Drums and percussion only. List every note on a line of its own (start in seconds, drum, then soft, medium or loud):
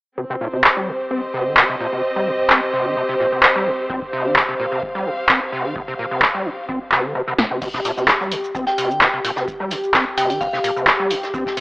0.64 clap loud
1.57 clap loud
2.50 clap loud
3.43 clap loud
3.90 kick loud
4.02 kick medium
4.36 kick loud
4.36 clap loud
4.83 kick loud
5.29 kick loud
5.29 clap loud
5.76 kick loud
6.22 kick loud
6.22 clap loud
6.69 kick loud
6.92 clap medium
7.38 snare medium
7.62 kick loud
7.62 closed hi-hat medium
7.62 crash medium
7.62 shaker soft
7.74 kick medium
7.74 snare medium
7.85 closed hi-hat medium
7.85 open hi-hat loud
7.85 shaker medium
7.98 shaker soft
8.08 kick loud
8.08 snare loud
8.08 clap loud
8.08 closed hi-hat medium
8.08 shaker soft
8.21 closed hi-hat soft
8.32 closed hi-hat medium
8.32 open hi-hat loud
8.32 shaker medium
8.44 shaker soft
8.55 kick loud
8.55 closed hi-hat medium
8.55 shaker soft
8.67 snare soft
8.78 closed hi-hat medium
8.78 open hi-hat loud
8.78 shaker medium
8.90 closed hi-hat soft
8.90 shaker soft
9.01 kick loud
9.01 snare loud
9.01 clap loud
9.01 closed hi-hat medium
9.01 shaker soft
9.25 closed hi-hat medium
9.25 open hi-hat loud
9.25 shaker medium
9.36 snare soft
9.36 shaker soft
9.48 kick loud
9.48 closed hi-hat medium
9.48 shaker soft
9.70 snare soft
9.70 closed hi-hat medium
9.70 open hi-hat loud
9.70 shaker medium
9.83 closed hi-hat soft
9.83 shaker soft
9.94 kick loud
9.94 snare loud
9.94 clap loud
9.94 closed hi-hat medium
9.94 shaker soft
10.18 closed hi-hat medium
10.18 open hi-hat loud
10.18 shaker medium
10.30 open hi-hat medium
10.30 shaker soft
10.40 kick loud
10.40 open hi-hat medium
10.40 shaker soft
10.54 snare soft
10.64 closed hi-hat medium
10.64 open hi-hat loud
10.64 shaker medium
10.77 shaker soft
10.87 kick loud
10.87 snare loud
10.87 clap loud
10.87 closed hi-hat medium
10.87 shaker soft
11.10 closed hi-hat medium
11.10 open hi-hat loud
11.10 shaker medium
11.23 snare soft
11.23 shaker soft
11.34 kick loud
11.34 closed hi-hat medium
11.34 shaker soft
11.46 kick medium
11.46 snare soft
11.57 closed hi-hat medium
11.57 open hi-hat loud